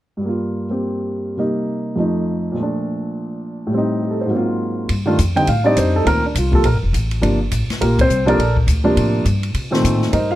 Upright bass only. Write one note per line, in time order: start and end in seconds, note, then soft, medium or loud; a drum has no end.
4.89 5.17 G2 medium
5.18 5.47 F2 medium
5.47 5.76 A2 medium
5.76 6.05 F2 medium
6.06 6.34 D2 medium
6.35 6.63 C2 medium
6.64 6.73 A#1 medium
6.73 6.82 G1 soft
6.83 6.92 F1 medium
6.93 7.21 A1 medium
7.22 7.50 G1 medium
7.51 7.68 A1 medium
7.69 muted upright bass stroke soft
7.81 8.08 A#1 medium
8.08 8.37 C2 medium
8.38 8.66 A#1 medium
8.67 8.96 D2 medium
8.96 9.24 A2 medium
9.25 9.53 G2 medium
9.54 9.83 C3 medium
9.84 10.12 A2 medium
10.12 10.35 G2 medium